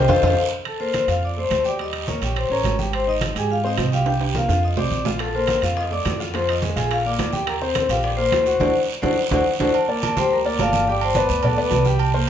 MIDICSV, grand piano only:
0, 0, Header, 1, 2, 480
1, 0, Start_track
1, 0, Key_signature, -2, "major"
1, 0, Tempo, 283420
1, 1113, Time_signature, 4, 2, 24, 8
1, 20821, End_track
2, 0, Start_track
2, 0, Title_t, "Grand piano"
2, 0, Program_c, 0, 0
2, 153, Note_on_c, 0, 72, 101
2, 158, Note_on_c, 0, 69, 93
2, 161, Note_on_c, 0, 65, 100
2, 307, Note_off_c, 0, 72, 0
2, 309, Note_off_c, 0, 69, 0
2, 311, Note_off_c, 0, 65, 0
2, 387, Note_on_c, 0, 65, 94
2, 391, Note_on_c, 0, 69, 93
2, 391, Note_on_c, 0, 72, 98
2, 543, Note_off_c, 0, 65, 0
2, 545, Note_off_c, 0, 69, 0
2, 545, Note_off_c, 0, 72, 0
2, 1352, Note_on_c, 0, 58, 64
2, 1358, Note_on_c, 0, 70, 63
2, 1747, Note_off_c, 0, 58, 0
2, 1751, Note_off_c, 0, 70, 0
2, 1830, Note_on_c, 0, 77, 60
2, 1833, Note_on_c, 0, 65, 58
2, 2227, Note_off_c, 0, 77, 0
2, 2228, Note_off_c, 0, 65, 0
2, 2314, Note_on_c, 0, 57, 68
2, 2317, Note_on_c, 0, 69, 62
2, 2710, Note_off_c, 0, 57, 0
2, 2712, Note_off_c, 0, 69, 0
2, 2795, Note_on_c, 0, 67, 67
2, 2801, Note_on_c, 0, 79, 65
2, 2994, Note_off_c, 0, 67, 0
2, 2997, Note_off_c, 0, 79, 0
2, 3040, Note_on_c, 0, 55, 60
2, 3043, Note_on_c, 0, 67, 62
2, 3434, Note_off_c, 0, 55, 0
2, 3436, Note_off_c, 0, 67, 0
2, 3523, Note_on_c, 0, 58, 64
2, 3530, Note_on_c, 0, 70, 66
2, 3719, Note_off_c, 0, 58, 0
2, 3724, Note_off_c, 0, 70, 0
2, 3774, Note_on_c, 0, 67, 66
2, 3781, Note_on_c, 0, 79, 64
2, 4163, Note_off_c, 0, 67, 0
2, 4167, Note_off_c, 0, 79, 0
2, 4245, Note_on_c, 0, 61, 67
2, 4256, Note_on_c, 0, 73, 66
2, 4639, Note_off_c, 0, 61, 0
2, 4645, Note_off_c, 0, 73, 0
2, 4720, Note_on_c, 0, 67, 64
2, 4731, Note_on_c, 0, 79, 72
2, 5116, Note_off_c, 0, 67, 0
2, 5123, Note_off_c, 0, 79, 0
2, 5202, Note_on_c, 0, 63, 65
2, 5204, Note_on_c, 0, 75, 65
2, 5598, Note_off_c, 0, 63, 0
2, 5599, Note_off_c, 0, 75, 0
2, 5686, Note_on_c, 0, 67, 62
2, 5691, Note_on_c, 0, 79, 60
2, 6081, Note_off_c, 0, 67, 0
2, 6083, Note_off_c, 0, 79, 0
2, 6166, Note_on_c, 0, 60, 70
2, 6172, Note_on_c, 0, 72, 73
2, 6561, Note_off_c, 0, 60, 0
2, 6565, Note_off_c, 0, 72, 0
2, 6643, Note_on_c, 0, 67, 70
2, 6654, Note_on_c, 0, 79, 70
2, 6842, Note_off_c, 0, 67, 0
2, 6849, Note_off_c, 0, 79, 0
2, 6894, Note_on_c, 0, 55, 65
2, 6896, Note_on_c, 0, 67, 68
2, 7286, Note_off_c, 0, 55, 0
2, 7287, Note_off_c, 0, 67, 0
2, 7373, Note_on_c, 0, 58, 60
2, 7374, Note_on_c, 0, 70, 62
2, 7569, Note_off_c, 0, 58, 0
2, 7569, Note_off_c, 0, 70, 0
2, 7599, Note_on_c, 0, 65, 66
2, 7602, Note_on_c, 0, 77, 58
2, 7997, Note_off_c, 0, 65, 0
2, 7999, Note_off_c, 0, 77, 0
2, 8076, Note_on_c, 0, 60, 70
2, 8082, Note_on_c, 0, 72, 65
2, 8476, Note_off_c, 0, 60, 0
2, 8480, Note_off_c, 0, 72, 0
2, 8570, Note_on_c, 0, 65, 64
2, 8579, Note_on_c, 0, 77, 71
2, 8964, Note_off_c, 0, 65, 0
2, 8970, Note_off_c, 0, 77, 0
2, 9062, Note_on_c, 0, 70, 66
2, 9063, Note_on_c, 0, 58, 64
2, 9452, Note_off_c, 0, 58, 0
2, 9452, Note_off_c, 0, 70, 0
2, 9539, Note_on_c, 0, 65, 64
2, 9545, Note_on_c, 0, 77, 60
2, 9930, Note_off_c, 0, 65, 0
2, 9934, Note_off_c, 0, 77, 0
2, 10009, Note_on_c, 0, 69, 69
2, 10010, Note_on_c, 0, 57, 68
2, 10404, Note_off_c, 0, 69, 0
2, 10405, Note_off_c, 0, 57, 0
2, 10499, Note_on_c, 0, 65, 64
2, 10505, Note_on_c, 0, 77, 74
2, 10694, Note_off_c, 0, 65, 0
2, 10697, Note_off_c, 0, 77, 0
2, 10743, Note_on_c, 0, 53, 67
2, 10749, Note_on_c, 0, 65, 67
2, 11133, Note_off_c, 0, 53, 0
2, 11136, Note_off_c, 0, 65, 0
2, 11212, Note_on_c, 0, 56, 62
2, 11219, Note_on_c, 0, 68, 64
2, 11409, Note_off_c, 0, 56, 0
2, 11413, Note_off_c, 0, 68, 0
2, 11449, Note_on_c, 0, 65, 65
2, 11453, Note_on_c, 0, 77, 63
2, 11844, Note_off_c, 0, 65, 0
2, 11847, Note_off_c, 0, 77, 0
2, 11947, Note_on_c, 0, 58, 71
2, 11947, Note_on_c, 0, 70, 68
2, 12334, Note_off_c, 0, 58, 0
2, 12335, Note_off_c, 0, 70, 0
2, 12414, Note_on_c, 0, 67, 76
2, 12420, Note_on_c, 0, 79, 76
2, 12807, Note_off_c, 0, 67, 0
2, 12810, Note_off_c, 0, 79, 0
2, 12897, Note_on_c, 0, 60, 72
2, 12902, Note_on_c, 0, 72, 64
2, 13289, Note_off_c, 0, 60, 0
2, 13291, Note_off_c, 0, 72, 0
2, 13369, Note_on_c, 0, 67, 69
2, 13369, Note_on_c, 0, 79, 67
2, 13764, Note_off_c, 0, 67, 0
2, 13764, Note_off_c, 0, 79, 0
2, 13851, Note_on_c, 0, 58, 72
2, 13855, Note_on_c, 0, 70, 75
2, 14245, Note_off_c, 0, 58, 0
2, 14247, Note_off_c, 0, 70, 0
2, 14327, Note_on_c, 0, 66, 70
2, 14330, Note_on_c, 0, 78, 71
2, 14526, Note_off_c, 0, 66, 0
2, 14527, Note_off_c, 0, 78, 0
2, 14568, Note_on_c, 0, 69, 90
2, 14573, Note_on_c, 0, 66, 90
2, 14575, Note_on_c, 0, 62, 89
2, 14723, Note_off_c, 0, 69, 0
2, 14726, Note_off_c, 0, 66, 0
2, 14727, Note_off_c, 0, 62, 0
2, 15279, Note_on_c, 0, 66, 86
2, 15281, Note_on_c, 0, 62, 92
2, 15282, Note_on_c, 0, 69, 85
2, 15437, Note_off_c, 0, 66, 0
2, 15438, Note_off_c, 0, 62, 0
2, 15439, Note_off_c, 0, 69, 0
2, 15766, Note_on_c, 0, 66, 89
2, 15767, Note_on_c, 0, 62, 98
2, 15773, Note_on_c, 0, 69, 84
2, 15921, Note_off_c, 0, 66, 0
2, 15922, Note_off_c, 0, 62, 0
2, 15925, Note_off_c, 0, 69, 0
2, 16249, Note_on_c, 0, 66, 87
2, 16252, Note_on_c, 0, 69, 89
2, 16253, Note_on_c, 0, 62, 102
2, 16402, Note_off_c, 0, 66, 0
2, 16404, Note_off_c, 0, 69, 0
2, 16405, Note_off_c, 0, 62, 0
2, 16731, Note_on_c, 0, 58, 75
2, 16738, Note_on_c, 0, 70, 70
2, 16740, Note_on_c, 0, 74, 70
2, 17122, Note_off_c, 0, 58, 0
2, 17126, Note_off_c, 0, 70, 0
2, 17128, Note_off_c, 0, 74, 0
2, 17213, Note_on_c, 0, 55, 77
2, 17224, Note_on_c, 0, 67, 84
2, 17227, Note_on_c, 0, 79, 76
2, 17603, Note_off_c, 0, 55, 0
2, 17610, Note_off_c, 0, 67, 0
2, 17611, Note_off_c, 0, 79, 0
2, 17697, Note_on_c, 0, 58, 73
2, 17701, Note_on_c, 0, 70, 80
2, 17707, Note_on_c, 0, 74, 79
2, 17889, Note_off_c, 0, 58, 0
2, 17891, Note_off_c, 0, 70, 0
2, 17894, Note_off_c, 0, 74, 0
2, 17947, Note_on_c, 0, 58, 69
2, 17951, Note_on_c, 0, 70, 67
2, 17952, Note_on_c, 0, 74, 75
2, 18330, Note_off_c, 0, 58, 0
2, 18333, Note_off_c, 0, 70, 0
2, 18333, Note_off_c, 0, 74, 0
2, 18420, Note_on_c, 0, 55, 75
2, 18425, Note_on_c, 0, 67, 78
2, 18432, Note_on_c, 0, 79, 77
2, 18805, Note_off_c, 0, 55, 0
2, 18808, Note_off_c, 0, 67, 0
2, 18812, Note_off_c, 0, 79, 0
2, 18892, Note_on_c, 0, 59, 68
2, 18898, Note_on_c, 0, 71, 75
2, 18901, Note_on_c, 0, 74, 71
2, 19280, Note_off_c, 0, 59, 0
2, 19283, Note_off_c, 0, 71, 0
2, 19285, Note_off_c, 0, 74, 0
2, 19370, Note_on_c, 0, 71, 69
2, 19374, Note_on_c, 0, 59, 77
2, 19379, Note_on_c, 0, 74, 72
2, 19562, Note_off_c, 0, 71, 0
2, 19564, Note_off_c, 0, 59, 0
2, 19567, Note_off_c, 0, 74, 0
2, 19603, Note_on_c, 0, 59, 73
2, 19603, Note_on_c, 0, 71, 78
2, 19605, Note_on_c, 0, 74, 79
2, 19993, Note_off_c, 0, 71, 0
2, 19994, Note_off_c, 0, 59, 0
2, 19995, Note_off_c, 0, 74, 0
2, 20076, Note_on_c, 0, 55, 88
2, 20077, Note_on_c, 0, 67, 86
2, 20088, Note_on_c, 0, 79, 94
2, 20468, Note_off_c, 0, 55, 0
2, 20469, Note_off_c, 0, 67, 0
2, 20476, Note_off_c, 0, 79, 0
2, 20558, Note_on_c, 0, 58, 82
2, 20562, Note_on_c, 0, 70, 81
2, 20565, Note_on_c, 0, 72, 82
2, 20821, Note_off_c, 0, 58, 0
2, 20821, Note_off_c, 0, 70, 0
2, 20821, Note_off_c, 0, 72, 0
2, 20821, End_track
0, 0, End_of_file